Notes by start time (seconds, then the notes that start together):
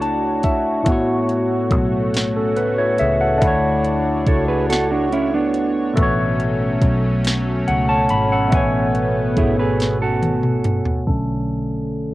Already playing: C#2 A3 D4 E4 F#4 A4 C#5 F#5
0.01 A5, closed hi-hat
0.43 E5, kick, closed hi-hat
0.82 A2 A3, kick, closed hi-hat
0.87 A1 B3 F#4
0.92 C#5
1.29 closed hi-hat
1.71 B1, kick, closed hi-hat
2.14 snare, closed hi-hat
2.36 C#4 A4
2.56 C#2 B4, closed hi-hat
2.78 E4 C#5
2.98 C#2 G#4 E5, closed hi-hat
3.21 A4 F#5
3.38 A3 D4 C#5, closed hi-hat
3.42 D2 E4 F#4, kick
3.47 C#5
3.84 closed hi-hat
4.26 C#2 A4 C#5, kick, closed hi-hat
4.48 G#4 B4
4.69 F#4 A4, snare, closed hi-hat
4.90 D4 F#4
5.12 C#4 E4, closed hi-hat
5.34 B3 D4
5.54 closed hi-hat
5.93 B2 F#3 A3 C#4, kick, closed hi-hat
5.98 A1 B3 F#4
6.03 C#5
6.40 closed hi-hat
6.82 B1, kick, closed hi-hat
7.25 snare, closed hi-hat
7.68 C#2 A4 F#5, closed hi-hat
7.89 C#5 A5
8.09 G#1 B5, closed hi-hat
8.32 A4 F#5
8.47 B2 A3
8.52 A1 A3 B3 G#5, kick, closed hi-hat
8.57 C#5
8.95 closed hi-hat
9.37 G#1 E4 G#4, kick, closed hi-hat
9.59 G#4 B4
9.80 snare, closed hi-hat
10.02 F#4 A4
10.22 closed hi-hat, high tom
10.43 mid tom
10.64 closed hi-hat, mid tom
10.86 floor tom
11.07 B1 D3 A3 C#4 A4, kick, closed hi-hat
11.50 closed hi-hat
11.92 closed hi-hat